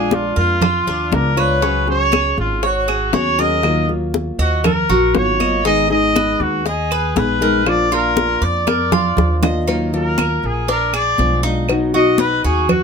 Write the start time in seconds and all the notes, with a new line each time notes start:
Already playing: A#1 G#3 D4 F4 G#4
0.11 F4, high bongo, high conga
0.36 F2 F4 A#4, high conga
0.61 F4, muted nylon-string guitar stroke, high bongo, high conga, low conga, claves
0.87 D#2 D4, high bongo, high conga
1.12 C#2 F3 G#3 D4 F4 A#4, high bongo, low bongo, high conga
1.37 G#3 D4 F4 B4 C#5, high bongo, claves
1.62 C#3 F#3 C#4 F#4 G#4, high bongo, high conga
1.87 F#3 C#4 F#4 G#4 C#5, high bongo, high conga
2.12 G#4, high bongo, high conga, claves
2.37 G#1 F4, high bongo, high conga
2.63 F#4 C#5, muted nylon-string guitar stroke, high bongo, high conga
2.88 G#4, high conga, claves
3.13 D#2 F#3 C#4 F#4 G#4 C#5, high bongo, low bongo, high conga
3.38 F#3 C#4 F#4 G#4 A#4 D#5, high bongo
3.63 D#3 F#3 A#3 F4, high bongo, high conga, claves
3.89 F#3 A#3 F4, high bongo, high conga
4.14 high bongo, high conga
4.39 D#2 F#4 D#5, high conga
4.64 A#4, muted nylon-string guitar stroke, high bongo, high conga, low conga, claves
4.89 A#1 F#4, high bongo, high conga, low conga
5.15 G#1 D#3 F#3 A#3 F4 C#5, high bongo, low bongo, high conga
5.40 F#3 A#3 F4 D#5, high bongo, high conga, claves
5.65 D#3 G#3 B3 D#4 G#4 D#5, high bongo, high conga
5.90 G#3 B3 D#4 G#4 D#5, high bongo, high conga
6.15 B4, high bongo, high conga, claves
6.40 D#2 F#4, high bongo, high conga
6.66 G#4 D#5, muted nylon-string guitar stroke, high bongo, high conga
6.91 B4, high conga, claves
7.16 A#1 G#3 B3 D#4 G#4 B4, high bongo, low bongo, high conga
7.41 G#3 B3 D#4 G#4 A#4, high bongo
7.66 F3 A#3 D4 F4 D5, high bongo, high conga, claves
7.92 A#3 D4 F4 A#4, high bongo, high conga
8.17 high bongo, high conga
8.42 F2 D5, high conga
8.67 A#4 D5, muted nylon-string guitar stroke, high bongo, high conga, claves
8.92 F4, high bongo, low conga
9.17 D#2 F3 A#3 D4 F4, high bongo, low conga
9.43 A#3 D4 F4 D#5, low bongo, low conga, claves
9.68 D#3 F#3 A#3 D#4 F4, cowbell, high conga
9.93 F#3 A#3 F4 A#4, cowbell, high conga
10.18 A#4, cowbell, high conga, claves
10.43 A#1 G#4, high conga
10.68 D4 A#4, muted nylon-string guitar stroke, cowbell, high conga
10.93 G#4 D5, high conga, claves
11.18 B1 F3 G#3 D4 F4, cowbell, high conga
11.43 G#3 D4 D#4 F4
11.68 B2 F#3 B3 D#4 F#4, cowbell, high conga, claves
11.94 F#3 B3 D#4 F#4 D#5, high conga
12.18 B4 D#5, cowbell, high conga
12.44 D#2 F#4 G#4, high conga
12.69 F#4, muted nylon-string guitar stroke, cowbell, high conga, low conga, claves